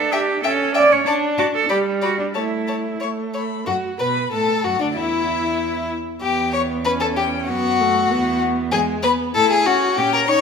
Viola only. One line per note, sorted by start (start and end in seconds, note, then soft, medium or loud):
0.00 0.37 D4 medium
0.44 0.99 C#4 medium
1.07 1.63 D4 medium
1.70 2.27 G3 medium
2.35 2.93 A3 soft
3.01 3.60 A3 soft
3.67 3.97 F#4 soft
4.00 4.31 B4 soft
4.32 4.66 A4 soft
4.64 4.79 F#4 soft
4.80 4.95 D4 soft
4.96 5.89 E4 soft
6.22 6.87 B3 soft
6.86 7.51 C#4 soft
7.49 7.82 B3 medium
7.80 8.13 A3 soft
8.11 8.72 B3 soft
8.73 9.06 G#3 soft
9.04 9.35 B3 soft
9.35 9.68 E4 soft
9.67 9.97 C#4 soft
9.98 10.30 C#4 soft
10.28 10.41 D#4 soft